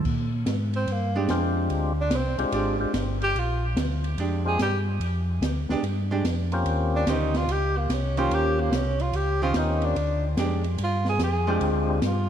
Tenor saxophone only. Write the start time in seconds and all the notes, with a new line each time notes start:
0.76 C4
0.92 A#3
2.01 D4
2.16 C4
3.23 G4
3.39 F4
4.48 G#4
4.62 G4
6.96 D4
7.10 D#4
7.36 F4
7.51 G4
7.78 A#3
7.93 C#4
8.18 F4
8.34 G4
8.60 A#3
8.76 C#4
9.01 F4
9.16 G4
9.43 F4
9.58 D#4
9.85 D4
10.83 F4
11.09 G#4
11.23 G#4
12.06 F4